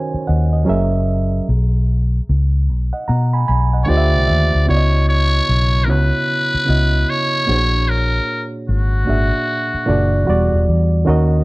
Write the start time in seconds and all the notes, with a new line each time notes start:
Already playing: D#3 C#4 F#4 A#4 C5 C#5 D#5 G#5
0.14 muted fingered electric bass stroke
0.27 D#2 D#5 F#5
0.53 D#5
0.65 F#1 F#3 C#4 G#4 A#4
0.69 E5
1.49 B1
2.29 C#2
2.69 B1
2.93 D#5 F#5
3.08 B2 F#5 A#5
3.33 G#5 B5
3.48 B1 G#5 B5
3.73 D#5 F#5
3.84 D3 A3 C#5
3.88 D2 F4 G4 C5 D5 D#5 G5
3.97 E5
4.15 C2
4.27 D#2 E5
4.55 D2
4.66 C#2 C#3 B3 E4 F#4 C#5
4.70 D5
4.77 D#5
5.09 C#5
5.49 B1
5.84 C#3 B3 E4 A#4
5.89 C#2 F#4 B4 C#5
6.54 muted fingered electric bass stroke
6.65 C#2 C#3 B3 E4 F#4
6.70 D#5
7.10 C#5
7.46 A#1 A#2 A#3 D4 F#4 G#4
7.50 C5
7.56 C#5
7.89 A#4
8.69 G#1 F#4
9.05 G#1 A#2 A#3 D4 F#4 G#4
9.09 E5
9.74 muted fingered electric bass stroke
9.85 F#1 A#2 A#3 D4 F#4 G#4
9.90 D5
10.25 E1 E3 G3 B3 F#4
10.30 D5
10.53 E1
10.68 E2
11.05 D#2 D#3 C#4 F#4 A#4
11.10 D#5